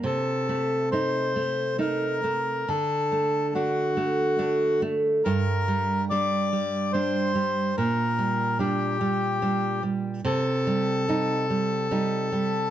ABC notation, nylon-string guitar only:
X:1
M:3/4
L:1/8
Q:1/4=72
K:Gm
V:1 name="Nylon-string guitar" clef=bass
C, A, [A,E] A, [A,E] A, | D, A, [A,D] A, [A,D] A, | G,, G, [G,D] G, [G,D] G, | B,, G, [G,D] G, [G,D] G, |
C, G, [G,E] G, [G,E] G, |]